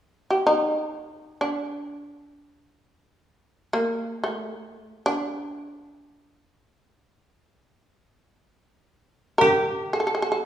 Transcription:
0.30 shamisen G4
0.47 shamisen D#4
1.41 shamisen D4
3.73 shamisen A#3
4.24 shamisen A3
5.06 shamisen D4
9.38 koto G4, shamisen A#4
9.93 shamisen A4
10.00 shamisen A4
10.07 shamisen A4
10.15 shamisen A4
10.22 shamisen A4
10.32 shamisen A4

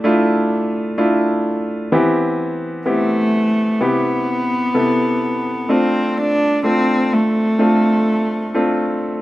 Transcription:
Already playing: grand piano D3 A3 D4 E4 F4 G4
0.04 grand piano A3 D4 E4 F4
0.98 grand piano A3 D4 E4 F4
1.92 grand piano E3 B3 C4 E4 G4
2.86 cello A3, grand piano B3 C4 E4 G4
3.81 grand piano C3 B3 E4 G4, cello B3
4.75 grand piano C3 B3 E4 A4
5.69 grand piano A3 C4 D4 F4, cello C4
6.18 cello D4
6.63 grand piano A3 C4 D4 F4, cello C4
7.13 cello A3
7.59 grand piano A3 C4 D4 F4
8.54 grand piano A3 C4 D4 F4

